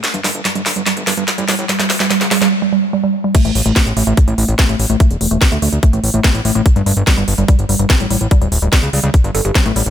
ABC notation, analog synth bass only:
X:1
M:4/4
L:1/16
Q:1/4=145
K:none
V:1 name="Analog synth bass" clef=bass
z G,,, G,,, G,,, z G,,, G,,, G,,, z G,,, G,,, G,,, z A,,, A,,, A,,, | z D,,, D,,, D,,, z ^C,, C,, C,, z8 | z A,,, A,,, A,,, z A,,, A,,, A,,, z A,,, A,,, A,,, z A,,, A,,, A,,, | z E,,, E,,, E,,, z D,, D,, D,, z A,,, A,,, A,,, z A,,, A,,, A,,, |
z G,,, G,,, G,,, z G,,, G,,, G,,, z G,,, G,,, G,,, z A,,, A,,, A,,, | z D,,, D,,, D,,, z ^C,, C,, C,, z G,,, G,,, G,,, z A,,, A,,, A,,, |]